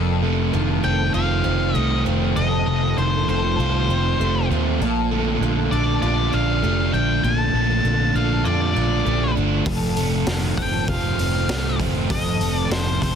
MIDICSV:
0, 0, Header, 1, 7, 480
1, 0, Start_track
1, 0, Tempo, 609137
1, 1864, Time_signature, 4, 2, 24, 8
1, 10363, End_track
2, 0, Start_track
2, 0, Title_t, "Lead electric guitar"
2, 0, Program_c, 0, 29
2, 663, Note_on_c, 0, 79, 88
2, 898, Note_off_c, 0, 79, 0
2, 901, Note_on_c, 0, 77, 91
2, 1389, Note_off_c, 0, 77, 0
2, 1389, Note_on_c, 0, 75, 91
2, 1591, Note_off_c, 0, 75, 0
2, 1861, Note_on_c, 0, 75, 100
2, 2348, Note_off_c, 0, 75, 0
2, 2351, Note_on_c, 0, 72, 85
2, 2589, Note_off_c, 0, 72, 0
2, 2599, Note_on_c, 0, 72, 79
2, 3519, Note_off_c, 0, 72, 0
2, 4501, Note_on_c, 0, 74, 76
2, 4736, Note_off_c, 0, 74, 0
2, 4746, Note_on_c, 0, 74, 89
2, 4991, Note_off_c, 0, 74, 0
2, 4994, Note_on_c, 0, 77, 88
2, 5436, Note_off_c, 0, 77, 0
2, 5466, Note_on_c, 0, 79, 95
2, 5702, Note_on_c, 0, 81, 104
2, 5711, Note_off_c, 0, 79, 0
2, 6426, Note_on_c, 0, 77, 75
2, 6444, Note_off_c, 0, 81, 0
2, 6663, Note_on_c, 0, 74, 74
2, 6671, Note_off_c, 0, 77, 0
2, 7351, Note_off_c, 0, 74, 0
2, 8335, Note_on_c, 0, 79, 87
2, 8580, Note_off_c, 0, 79, 0
2, 8583, Note_on_c, 0, 77, 95
2, 9271, Note_off_c, 0, 77, 0
2, 9545, Note_on_c, 0, 75, 110
2, 9899, Note_off_c, 0, 75, 0
2, 9899, Note_on_c, 0, 74, 110
2, 10019, Note_off_c, 0, 74, 0
2, 10022, Note_on_c, 0, 72, 90
2, 10256, Note_off_c, 0, 72, 0
2, 10265, Note_on_c, 0, 72, 67
2, 10363, Note_off_c, 0, 72, 0
2, 10363, End_track
3, 0, Start_track
3, 0, Title_t, "Twelve-string acoustic guitar"
3, 0, Program_c, 1, 25
3, 0, Note_on_c, 1, 69, 82
3, 422, Note_on_c, 1, 65, 78
3, 656, Note_off_c, 1, 69, 0
3, 659, Note_on_c, 1, 69, 75
3, 896, Note_off_c, 1, 69, 0
3, 899, Note_on_c, 1, 67, 82
3, 922, Note_off_c, 1, 65, 0
3, 1135, Note_on_c, 1, 65, 77
3, 1142, Note_off_c, 1, 67, 0
3, 1379, Note_on_c, 1, 67, 83
3, 1403, Note_off_c, 1, 65, 0
3, 1622, Note_off_c, 1, 67, 0
3, 1622, Note_on_c, 1, 65, 75
3, 1864, Note_on_c, 1, 69, 95
3, 2348, Note_off_c, 1, 65, 0
3, 2348, Note_on_c, 1, 65, 77
3, 2590, Note_off_c, 1, 69, 0
3, 2593, Note_on_c, 1, 69, 78
3, 2837, Note_on_c, 1, 67, 82
3, 2860, Note_off_c, 1, 65, 0
3, 2860, Note_off_c, 1, 69, 0
3, 3070, Note_off_c, 1, 67, 0
3, 3075, Note_on_c, 1, 65, 78
3, 3314, Note_off_c, 1, 65, 0
3, 3317, Note_on_c, 1, 67, 82
3, 3550, Note_off_c, 1, 67, 0
3, 3558, Note_on_c, 1, 65, 76
3, 3796, Note_on_c, 1, 69, 89
3, 4276, Note_off_c, 1, 65, 0
3, 4276, Note_on_c, 1, 65, 74
3, 4508, Note_off_c, 1, 69, 0
3, 4511, Note_on_c, 1, 69, 77
3, 4748, Note_on_c, 1, 67, 85
3, 4771, Note_off_c, 1, 65, 0
3, 4771, Note_off_c, 1, 69, 0
3, 4984, Note_off_c, 1, 67, 0
3, 4987, Note_on_c, 1, 65, 79
3, 5227, Note_off_c, 1, 65, 0
3, 5230, Note_on_c, 1, 67, 77
3, 5466, Note_off_c, 1, 67, 0
3, 5469, Note_on_c, 1, 65, 68
3, 5708, Note_on_c, 1, 69, 94
3, 6185, Note_off_c, 1, 65, 0
3, 6185, Note_on_c, 1, 65, 80
3, 6424, Note_off_c, 1, 69, 0
3, 6427, Note_on_c, 1, 69, 77
3, 6661, Note_on_c, 1, 67, 80
3, 6685, Note_off_c, 1, 65, 0
3, 6685, Note_off_c, 1, 69, 0
3, 6901, Note_off_c, 1, 67, 0
3, 6906, Note_on_c, 1, 65, 79
3, 7139, Note_off_c, 1, 65, 0
3, 7142, Note_on_c, 1, 67, 76
3, 7381, Note_off_c, 1, 67, 0
3, 7384, Note_on_c, 1, 65, 72
3, 7616, Note_on_c, 1, 69, 84
3, 8096, Note_off_c, 1, 65, 0
3, 8096, Note_on_c, 1, 65, 81
3, 8330, Note_off_c, 1, 69, 0
3, 8333, Note_on_c, 1, 69, 77
3, 8571, Note_on_c, 1, 67, 75
3, 8595, Note_off_c, 1, 65, 0
3, 8595, Note_off_c, 1, 69, 0
3, 8811, Note_off_c, 1, 67, 0
3, 8814, Note_on_c, 1, 65, 72
3, 9056, Note_off_c, 1, 65, 0
3, 9059, Note_on_c, 1, 67, 79
3, 9295, Note_off_c, 1, 67, 0
3, 9298, Note_on_c, 1, 65, 72
3, 9541, Note_on_c, 1, 69, 89
3, 10022, Note_off_c, 1, 65, 0
3, 10022, Note_on_c, 1, 65, 83
3, 10266, Note_off_c, 1, 69, 0
3, 10269, Note_on_c, 1, 69, 81
3, 10363, Note_off_c, 1, 65, 0
3, 10363, Note_off_c, 1, 69, 0
3, 10363, End_track
4, 0, Start_track
4, 0, Title_t, "Overdriven electric guitar"
4, 0, Program_c, 2, 29
4, 178, Note_on_c, 2, 57, 66
4, 660, Note_on_c, 2, 60, 68
4, 1127, Note_off_c, 2, 60, 0
4, 1369, Note_off_c, 2, 57, 0
4, 1611, Note_on_c, 2, 60, 62
4, 2097, Note_on_c, 2, 57, 66
4, 2576, Note_off_c, 2, 60, 0
4, 2586, Note_on_c, 2, 60, 62
4, 3056, Note_off_c, 2, 60, 0
4, 3310, Note_off_c, 2, 57, 0
4, 3551, Note_on_c, 2, 60, 63
4, 3787, Note_off_c, 2, 60, 0
4, 4029, Note_on_c, 2, 57, 71
4, 4499, Note_on_c, 2, 62, 60
4, 4970, Note_off_c, 2, 62, 0
4, 5215, Note_off_c, 2, 57, 0
4, 5453, Note_on_c, 2, 62, 66
4, 5940, Note_on_c, 2, 57, 66
4, 6404, Note_off_c, 2, 62, 0
4, 6414, Note_on_c, 2, 62, 64
4, 6883, Note_off_c, 2, 62, 0
4, 7131, Note_off_c, 2, 57, 0
4, 7371, Note_on_c, 2, 62, 71
4, 7616, Note_off_c, 2, 62, 0
4, 7859, Note_on_c, 2, 57, 63
4, 8342, Note_on_c, 2, 60, 71
4, 8816, Note_off_c, 2, 60, 0
4, 9056, Note_off_c, 2, 57, 0
4, 9299, Note_on_c, 2, 60, 68
4, 9783, Note_on_c, 2, 57, 69
4, 10250, Note_off_c, 2, 60, 0
4, 10260, Note_on_c, 2, 60, 71
4, 10363, Note_off_c, 2, 57, 0
4, 10363, Note_off_c, 2, 60, 0
4, 10363, End_track
5, 0, Start_track
5, 0, Title_t, "Distorted electric guitar"
5, 0, Program_c, 3, 30
5, 0, Note_on_c, 3, 41, 69
5, 176, Note_on_c, 3, 48, 70
5, 410, Note_on_c, 3, 51, 67
5, 660, Note_on_c, 3, 57, 77
5, 902, Note_on_c, 3, 65, 75
5, 1143, Note_off_c, 3, 41, 0
5, 1143, Note_on_c, 3, 60, 60
5, 1379, Note_off_c, 3, 48, 0
5, 1392, Note_off_c, 3, 57, 0
5, 1395, Note_on_c, 3, 57, 70
5, 1616, Note_off_c, 3, 51, 0
5, 1629, Note_on_c, 3, 51, 62
5, 1864, Note_on_c, 3, 41, 71
5, 2106, Note_on_c, 3, 48, 68
5, 2336, Note_off_c, 3, 51, 0
5, 2343, Note_off_c, 3, 60, 0
5, 2345, Note_on_c, 3, 51, 74
5, 2369, Note_off_c, 3, 65, 0
5, 2587, Note_off_c, 3, 57, 0
5, 2590, Note_on_c, 3, 57, 74
5, 2837, Note_on_c, 3, 65, 77
5, 3063, Note_off_c, 3, 41, 0
5, 3073, Note_on_c, 3, 60, 56
5, 3304, Note_off_c, 3, 48, 0
5, 3310, Note_off_c, 3, 57, 0
5, 3313, Note_on_c, 3, 57, 59
5, 3538, Note_off_c, 3, 51, 0
5, 3547, Note_on_c, 3, 51, 64
5, 3785, Note_off_c, 3, 51, 0
5, 3788, Note_off_c, 3, 60, 0
5, 3795, Note_on_c, 3, 46, 76
5, 3819, Note_off_c, 3, 57, 0
5, 4031, Note_on_c, 3, 50, 65
5, 4259, Note_off_c, 3, 50, 0
5, 4268, Note_on_c, 3, 50, 69
5, 4506, Note_on_c, 3, 57, 76
5, 4741, Note_off_c, 3, 65, 0
5, 4744, Note_on_c, 3, 65, 75
5, 4983, Note_on_c, 3, 62, 66
5, 4988, Note_off_c, 3, 46, 0
5, 5216, Note_off_c, 3, 57, 0
5, 5219, Note_on_c, 3, 57, 65
5, 5450, Note_off_c, 3, 50, 0
5, 5460, Note_on_c, 3, 50, 67
5, 5702, Note_on_c, 3, 46, 80
5, 5930, Note_off_c, 3, 50, 0
5, 5939, Note_on_c, 3, 50, 71
5, 6178, Note_off_c, 3, 50, 0
5, 6182, Note_off_c, 3, 62, 0
5, 6187, Note_on_c, 3, 50, 68
5, 6429, Note_off_c, 3, 57, 0
5, 6432, Note_on_c, 3, 57, 73
5, 6667, Note_off_c, 3, 65, 0
5, 6670, Note_on_c, 3, 65, 73
5, 6902, Note_off_c, 3, 46, 0
5, 6907, Note_on_c, 3, 62, 58
5, 7145, Note_off_c, 3, 57, 0
5, 7148, Note_on_c, 3, 57, 63
5, 7381, Note_off_c, 3, 50, 0
5, 7391, Note_on_c, 3, 50, 60
5, 7625, Note_off_c, 3, 62, 0
5, 7626, Note_off_c, 3, 50, 0
5, 7629, Note_on_c, 3, 41, 73
5, 7866, Note_on_c, 3, 48, 72
5, 8092, Note_on_c, 3, 51, 70
5, 8115, Note_off_c, 3, 57, 0
5, 8115, Note_off_c, 3, 65, 0
5, 8345, Note_on_c, 3, 57, 77
5, 8581, Note_on_c, 3, 65, 75
5, 8819, Note_on_c, 3, 60, 61
5, 8825, Note_off_c, 3, 41, 0
5, 9058, Note_off_c, 3, 57, 0
5, 9061, Note_on_c, 3, 57, 67
5, 9064, Note_off_c, 3, 48, 0
5, 9297, Note_off_c, 3, 51, 0
5, 9308, Note_on_c, 3, 51, 63
5, 9544, Note_on_c, 3, 41, 72
5, 9775, Note_on_c, 3, 48, 65
5, 10017, Note_off_c, 3, 51, 0
5, 10020, Note_off_c, 3, 60, 0
5, 10026, Note_on_c, 3, 51, 66
5, 10050, Note_off_c, 3, 65, 0
5, 10260, Note_off_c, 3, 57, 0
5, 10263, Note_on_c, 3, 57, 77
5, 10363, Note_off_c, 3, 41, 0
5, 10363, Note_off_c, 3, 48, 0
5, 10363, Note_off_c, 3, 51, 0
5, 10363, Note_off_c, 3, 57, 0
5, 10363, End_track
6, 0, Start_track
6, 0, Title_t, "Fingered electric bass"
6, 0, Program_c, 4, 33
6, 0, Note_on_c, 4, 29, 87
6, 396, Note_off_c, 4, 29, 0
6, 427, Note_on_c, 4, 29, 74
6, 652, Note_off_c, 4, 29, 0
6, 664, Note_on_c, 4, 29, 84
6, 890, Note_off_c, 4, 29, 0
6, 901, Note_on_c, 4, 29, 82
6, 1128, Note_off_c, 4, 29, 0
6, 1148, Note_on_c, 4, 29, 81
6, 1372, Note_off_c, 4, 29, 0
6, 1388, Note_on_c, 4, 36, 84
6, 1612, Note_off_c, 4, 36, 0
6, 1624, Note_on_c, 4, 29, 83
6, 1849, Note_off_c, 4, 29, 0
6, 1867, Note_on_c, 4, 29, 94
6, 2091, Note_off_c, 4, 29, 0
6, 2105, Note_on_c, 4, 29, 84
6, 2330, Note_off_c, 4, 29, 0
6, 2346, Note_on_c, 4, 29, 82
6, 2570, Note_off_c, 4, 29, 0
6, 2586, Note_on_c, 4, 29, 82
6, 2810, Note_off_c, 4, 29, 0
6, 2823, Note_on_c, 4, 36, 78
6, 3049, Note_off_c, 4, 36, 0
6, 3064, Note_on_c, 4, 29, 87
6, 3289, Note_off_c, 4, 29, 0
6, 3304, Note_on_c, 4, 29, 88
6, 3529, Note_off_c, 4, 29, 0
6, 3545, Note_on_c, 4, 39, 84
6, 3770, Note_off_c, 4, 39, 0
6, 3784, Note_on_c, 4, 34, 89
6, 4234, Note_off_c, 4, 34, 0
6, 4263, Note_on_c, 4, 34, 76
6, 4488, Note_off_c, 4, 34, 0
6, 4504, Note_on_c, 4, 34, 85
6, 4729, Note_off_c, 4, 34, 0
6, 4749, Note_on_c, 4, 34, 87
6, 4971, Note_off_c, 4, 34, 0
6, 4992, Note_on_c, 4, 34, 77
6, 5213, Note_off_c, 4, 34, 0
6, 5226, Note_on_c, 4, 29, 81
6, 5450, Note_off_c, 4, 29, 0
6, 5466, Note_on_c, 4, 34, 93
6, 5690, Note_off_c, 4, 34, 0
6, 5700, Note_on_c, 4, 34, 90
6, 5926, Note_off_c, 4, 34, 0
6, 5936, Note_on_c, 4, 34, 85
6, 6164, Note_off_c, 4, 34, 0
6, 6180, Note_on_c, 4, 34, 82
6, 6407, Note_off_c, 4, 34, 0
6, 6422, Note_on_c, 4, 34, 88
6, 6648, Note_off_c, 4, 34, 0
6, 6663, Note_on_c, 4, 41, 84
6, 6888, Note_off_c, 4, 41, 0
6, 6905, Note_on_c, 4, 34, 72
6, 7129, Note_off_c, 4, 34, 0
6, 7140, Note_on_c, 4, 34, 77
6, 7366, Note_off_c, 4, 34, 0
6, 7380, Note_on_c, 4, 31, 78
6, 7606, Note_off_c, 4, 31, 0
6, 8095, Note_on_c, 4, 29, 85
6, 8323, Note_off_c, 4, 29, 0
6, 8334, Note_on_c, 4, 29, 88
6, 8563, Note_off_c, 4, 29, 0
6, 8571, Note_on_c, 4, 29, 89
6, 8801, Note_off_c, 4, 29, 0
6, 8807, Note_on_c, 4, 29, 77
6, 9040, Note_off_c, 4, 29, 0
6, 9051, Note_on_c, 4, 36, 83
6, 9282, Note_off_c, 4, 36, 0
6, 9297, Note_on_c, 4, 29, 88
6, 9525, Note_off_c, 4, 29, 0
6, 9537, Note_on_c, 4, 29, 88
6, 9765, Note_off_c, 4, 29, 0
6, 9773, Note_on_c, 4, 29, 83
6, 10003, Note_off_c, 4, 29, 0
6, 10009, Note_on_c, 4, 29, 81
6, 10241, Note_off_c, 4, 29, 0
6, 10257, Note_on_c, 4, 29, 96
6, 10363, Note_off_c, 4, 29, 0
6, 10363, End_track
7, 0, Start_track
7, 0, Title_t, "Drums"
7, 7610, Note_on_c, 9, 46, 84
7, 7612, Note_on_c, 9, 36, 121
7, 7689, Note_off_c, 9, 46, 0
7, 7691, Note_off_c, 9, 36, 0
7, 7852, Note_on_c, 9, 46, 50
7, 7931, Note_off_c, 9, 46, 0
7, 8089, Note_on_c, 9, 46, 69
7, 8092, Note_on_c, 9, 38, 100
7, 8168, Note_off_c, 9, 46, 0
7, 8171, Note_off_c, 9, 38, 0
7, 8333, Note_on_c, 9, 36, 75
7, 8334, Note_on_c, 9, 46, 55
7, 8412, Note_off_c, 9, 36, 0
7, 8413, Note_off_c, 9, 46, 0
7, 8574, Note_on_c, 9, 36, 108
7, 8577, Note_on_c, 9, 46, 65
7, 8653, Note_off_c, 9, 36, 0
7, 8656, Note_off_c, 9, 46, 0
7, 8817, Note_on_c, 9, 46, 44
7, 8896, Note_off_c, 9, 46, 0
7, 9054, Note_on_c, 9, 46, 72
7, 9057, Note_on_c, 9, 38, 114
7, 9132, Note_off_c, 9, 46, 0
7, 9136, Note_off_c, 9, 38, 0
7, 9295, Note_on_c, 9, 36, 84
7, 9300, Note_on_c, 9, 46, 52
7, 9374, Note_off_c, 9, 36, 0
7, 9379, Note_off_c, 9, 46, 0
7, 9533, Note_on_c, 9, 46, 85
7, 9535, Note_on_c, 9, 36, 114
7, 9612, Note_off_c, 9, 46, 0
7, 9614, Note_off_c, 9, 36, 0
7, 9777, Note_on_c, 9, 46, 56
7, 9856, Note_off_c, 9, 46, 0
7, 10017, Note_on_c, 9, 46, 73
7, 10020, Note_on_c, 9, 38, 101
7, 10096, Note_off_c, 9, 46, 0
7, 10099, Note_off_c, 9, 38, 0
7, 10259, Note_on_c, 9, 36, 74
7, 10264, Note_on_c, 9, 46, 59
7, 10338, Note_off_c, 9, 36, 0
7, 10342, Note_off_c, 9, 46, 0
7, 10363, End_track
0, 0, End_of_file